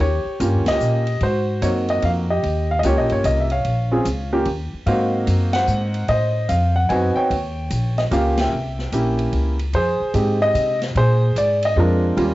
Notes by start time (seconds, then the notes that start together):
0.00 D#2 G4 C#5, ride
0.25 muted upright bass stroke
0.40 G2 A#3 C#4 F4 G4, kick, hi-hat pedal, ride
0.53 D#2
0.66 C#2 G4 D#5, snare, ride
0.80 A#2, hi-hat pedal
1.07 ride
1.21 G#2 F#4 C5, kick, ride
1.62 F#2 A#3 C4 D#4 F#4 C#5, kick, hi-hat pedal, ride
1.88 D#5, ride
2.02 F2 F5, kick, ride
2.30 G4 D#5
2.43 D#2, kick, ride
2.71 F5
2.79 D#5, hi-hat pedal, ride
2.84 C#2 A#3 C#4 F4 G4 C#5, kick
2.98 A#1 D#5
3.09 G1 C#5, ride
3.24 C2 D#5, kick, hi-hat pedal, ride
3.40 E5
3.50 C#5 F5, ride
3.65 A#1, kick, ride
3.91 C4 C#4 F4 G#4
4.05 C#2, kick, hi-hat pedal, ride
4.33 A#3 C#4 F4 G4
4.45 D#2, kick, ride
4.73 muted upright bass stroke
4.86 G#2 A#3 C4 D#4 F#4 C5 F5, kick, ride
5.27 F#2, kick, hi-hat pedal, ride
5.53 C5 F#5, snare, ride
5.67 G#2, hi-hat pedal
5.94 ride
6.08 A2 C5 D#5, kick, ride
6.49 F2 F5, kick, hi-hat pedal, ride
6.76 F#5
6.89 F#2 B3 C4 D#4 F#4 G#5, kick, ride
7.16 C#5 G5, muted upright bass stroke
7.30 D#2, kick, ride
7.70 A#1, kick, hi-hat pedal, ride
7.97 D#5, snare, ride
8.11 C#2 A#3 C#4 F4 G4 F5, kick, hi-hat pedal, ride
8.37 E5 G5, snare, ride
8.52 C2
8.79 snare
8.92 A#1 A#3 C#4 E4 G4, kick, hi-hat pedal, ride
9.19 ride
9.33 C#2, kick, ride
9.59 ride
9.73 F2 G#4 C5, kick, ride
10.00 muted upright bass stroke
10.14 G#2 G#3 C4 D#4 G4, kick, hi-hat pedal, ride
10.42 D#5
10.54 C3, kick, hi-hat pedal, ride
10.82 snare, ride
10.95 A#2 G#4 C5, kick, ride
11.36 G#2 D5, kick, hi-hat pedal, ride
11.63 D#5, ride
11.76 F2 G#3 C4 D4 F4 A#4, kick
12.17 D#2 G3 A#3 C#4 F4, kick, ride